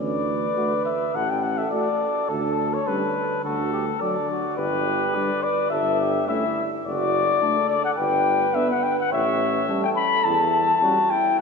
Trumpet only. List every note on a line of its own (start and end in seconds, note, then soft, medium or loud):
0.00 0.82 D5 medium
0.85 1.17 E5 medium
1.15 1.31 F#5 medium
1.30 1.45 G5 medium
1.43 1.59 F#5 medium
1.58 1.70 E5 medium
1.71 2.30 D5 medium
2.29 2.76 A4 medium
2.74 2.89 C#5 soft
2.87 3.44 B4 medium
3.44 4.02 A4 medium
4.01 4.57 D5 medium
4.57 5.45 B4 medium
5.43 5.70 D5 medium
5.70 6.26 E5 medium
6.28 6.64 E5 medium
6.85 7.66 D5 medium
7.69 7.84 D5 medium
7.84 7.91 F#5 medium
7.97 8.56 G5 medium
8.54 8.69 E5 medium
8.71 8.85 F#5 medium
8.83 8.98 G5 medium
9.00 9.12 F#5 medium
9.12 9.82 E5 medium
9.84 9.90 G5 medium
9.96 10.26 B5 medium
10.24 11.12 A5 medium
11.10 11.39 G5 medium